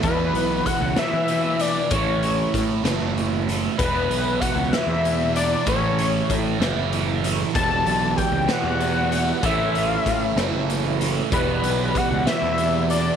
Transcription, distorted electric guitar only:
\new Staff \with { instrumentName = "Distorted electric guitar" } { \clef bass \time 6/8 \key e \dorian \tempo 4. = 64 <e, b, e>4. <e, b, e>4. | <a, e a>4. <a, e a>4. | <e, b, e>4. <e, b, e>4. | <a, e a>4. <a, e a>4. |
<e, b, e>4. <e, b, e>4. | <a, e a>4. <a, e a>4. | <e, b, e>4. <e, b, e>4. | }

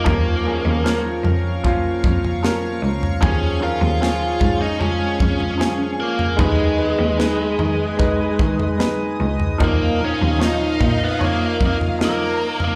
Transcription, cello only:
\new Staff \with { instrumentName = "Cello" } { \clef bass \time 4/4 \key aes \dorian \tempo 4 = 75 ees,8. ees,8. f,8. r16 f,4 des,8 | ees,8. ees,8. aes,8. r16 f,4. | ees,8. ees,8. ees8. r16 ees4 des,8 | ees,8. ees,8. bes,8. r16 f,4. | }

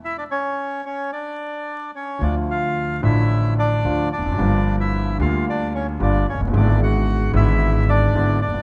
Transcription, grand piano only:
\new Staff \with { instrumentName = "Grand piano" } { \clef bass \time 4/4 \key d \minor \tempo 4 = 111 r1 | <d, d f a f'>4. <a,, a, d f a d'>4. <d, d f a f'>8 r32 e,32 f,32 fis,32 | <g,, g, d f g bes>4. <d, d g bes f'>4. <g,, g, d g bes f'>8 r32 f,,32 fis,,32 g,,32 | <gis,, gis, d gis b e'>4. <gis,, gis, d gis b e'>4. <gis,, gis, d gis b e'>8 r32 fis,,32 g,,32 r32 | }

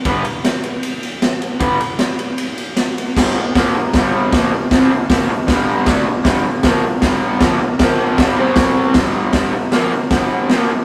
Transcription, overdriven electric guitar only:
\new Staff \with { instrumentName = "Overdriven electric guitar" } { \clef bass \time 4/4 \key c \major \tempo 4 = 155 <g b d' b'>8 r2. r8 | <g b d' b'>8 r2. r8 | <g, d g>8 <g, d>8 <bes, f bes>8 <g, d>8 <g, d g>4 <bes, f bes>8 <g, d>8 | <c g c'>8 <g, d>8 <bes, f bes>8 <g, d>8 <g, d g>4 <d a d'>8 <g, d>8 |
<g, d g>8 <g, d>8 <bes, f bes>8 <g, d>8 <g, d g>4 <bes, f bes>8 <g, d>8 | <bes, f bes>4 <g, d g>8 <c g c'>4. <g, d g>4 | <g, d g>8 <g, d>8 <bes, f bes>8 <g, d>8 <g, d g>4 <bes, f bes>8 <g, d>8 | }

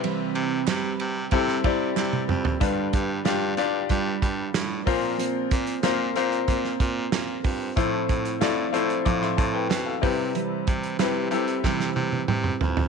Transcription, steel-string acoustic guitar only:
\new Staff \with { instrumentName = "Steel-string acoustic guitar" } { \time 4/4 \key c \major \tempo 4 = 93 <c e g c' g' b'>4 <g c' g' b'>4 <g c' g' b'>8 <g c' g' b'>8 <g c' g' b'>8 <g c' g' b'>8 | <g d' f' b'>4 <g d' f' b'>8 <d' f' b'>8 <g d' f' b'>4 <g d' f' b'>8 <c' f' bes'>8 | <bes c' f' bes'>4 <bes c' f' bes'>8 <c' f' bes'>8 <bes c' f' bes'>4 <bes c' f' bes'>8 <c' f' bes'>8 | <a, f a c' e' a'>4 <a c' e' a'>8 <a c' e' a'>8 <a, f a c' e' a'>4 <a c' e' a'>8 <g c' e' b'>8 |
<c e g c' e' b'>4 <g c' e' b'>8 <g c' e' b'>8 <c e g c' e' b'>4 <g c' e' b'>8 <g c' e' b'>8 | }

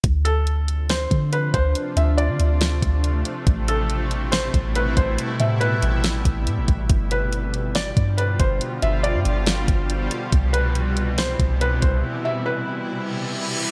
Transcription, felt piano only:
\new Staff \with { instrumentName = "Felt piano" } { \time 4/4 \key d \dorian \tempo 4 = 140 r8 a'4. c''4 b'8 c''8 | r8 e''8 d''2. | r8 a'4. c''4 b'8 c''8 | r8 e''8 b'2. |
r8 b'4. d''4 b'8 c''8 | r8 e''8 d''2. | r8 b'4. c''4 b'8 c''8 | r8 e''8 b'2. | }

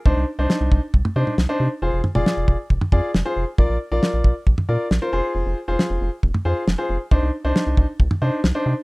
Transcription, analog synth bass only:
\new Staff \with { instrumentName = "Analog synth bass" } { \clef bass \time 4/4 \key f \dorian \tempo 4 = 136 c,16 c,16 r16 c,16 r16 c,16 c,16 r16 c,16 r16 c16 r16 c,16 r16 c16 r16 | f,,16 f,,16 r16 f,,16 r16 f,,16 f,,16 r16 f,,16 r16 f,16 r16 f,,16 r16 f,,16 r16 | bes,,16 bes,,16 r16 bes,,16 r16 bes,,16 bes,,16 r16 bes,,16 r16 bes,16 r16 bes,,16 r16 f,,16 r16 | f,,16 f,,16 r16 f,,16 r16 f,,16 f,,16 r16 f,,16 r16 f,16 r16 f,,16 r16 f,,16 r16 |
c,16 c,16 r16 c,16 r16 c,16 c,16 r16 c,16 r16 c16 r16 c,16 r16 c16 r16 | }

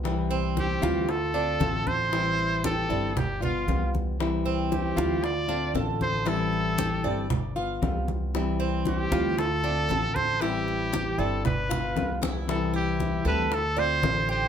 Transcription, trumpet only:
\new Staff \with { instrumentName = "Trumpet" } { \time 4/4 \key c \major \tempo 4 = 116 r4 g'4 a'4. c''8~ | c''4 a'4 g'8 f'4 r8 | r4 g'4 d''4 r8 c''8 | a'2 r2 |
r4 g'4 a'4. c''8 | g'4. a'8 b'4. r8 | a'8 g'4 b'8 a'8 c''4 c''8 | }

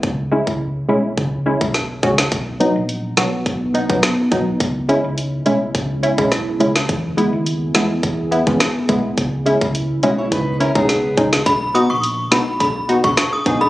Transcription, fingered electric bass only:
\new Staff \with { instrumentName = "Fingered electric bass" } { \clef bass \time 4/4 \key b \major \tempo 4 = 105 cis,8. cis,8. b,,8 cis,8. b,,8. cis,8 | b,,8. ais,,8. b,,8 b,,8. b,,16 r8 b,,8 | cis,8. cis,8. b,,8 cis,8. b,,8. cis,8 | e,8. dis,8. e,8 e,8. e,16 r8 b,,8 |
cis,8. cis,8. b,,8 cis,8. b,,8. cis,8 | b,,8. ais,,8. b,,8 b,,8. b,,16 r8 b,,8 | }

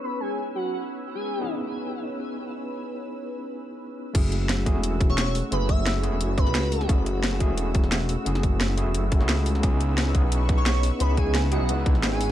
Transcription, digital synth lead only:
\new Staff \with { instrumentName = "Digital synth lead" } { \time 4/4 \key fis \dorian \tempo 4 = 175 b'8 gis'8 r8 fis'8 r4 r16 gis'8.~ | gis'16 r2. r8. | r1 | r2 r8. cis''8 r8. |
b'8 e''8 r4. b'4. | r1 | r1 | r2 r8. cis''8 r8. |
b'8 gis'8 r8 fis'8 r4 r16 gis'8. | }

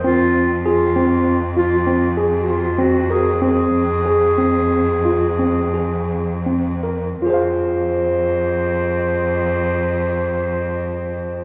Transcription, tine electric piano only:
\new Staff \with { instrumentName = "Tine electric piano" } { \time 11/8 \key f \minor \tempo 4 = 88 c'4 aes'8 c'4 f'8 c'8 aes'4 c'8 bes'8 | c'4 aes'8 c'4 f'8 c'8 aes'4 c'8 bes'8 | <f' aes' c'' f''>1~ <f' aes' c'' f''>4. | }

